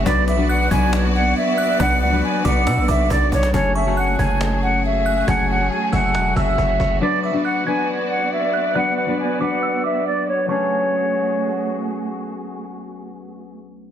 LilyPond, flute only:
\new Staff \with { instrumentName = "Flute" } { \time 4/4 \key fis \minor \tempo 4 = 138 d''8 e''8 fis''8 gis''8 r8 fis''8 e''4 | fis''8 fis''8 gis''8 fis''4 e''8 d''8 cis''8 | cis''8 e''8 fis''8 gis''8 r8 fis''8 e''4 | fis''8 fis''8 gis''8 fis''4 e''4. |
d''8 e''8 fis''8 gis''8 r8 fis''8 e''4 | fis''8 fis''8 gis''8 fis''4 e''8 d''8 cis''8 | cis''2. r4 | r1 | }